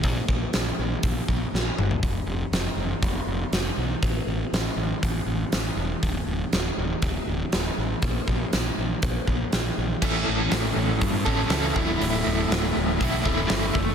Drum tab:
CC |----------------|----------------|----------------|----------------|
HH |o---o---o-------|o---o---o---o---|o---o---o---o---|o---o---o---o---|
SD |----o-------o---|----o-------o---|----o-------o---|----o-------o---|
T2 |--------------o-|----------------|----------------|----------------|
FT |---------------o|----------------|----------------|----------------|
BD |o-o-----o-o-----|o-------o-------|o-------o-------|o-------o-------|

CC |----------------|x---------------|----------------|
HH |o---o---o---o---|----o---o---o---|o---o---o---o---|
SD |----o-------o---|----o-------o---|----o-------o---|
T2 |----------------|----------------|----------------|
FT |----------------|----------------|----------------|
BD |o-o-----o-o-----|o-------o-o---o-|--------o-o---o-|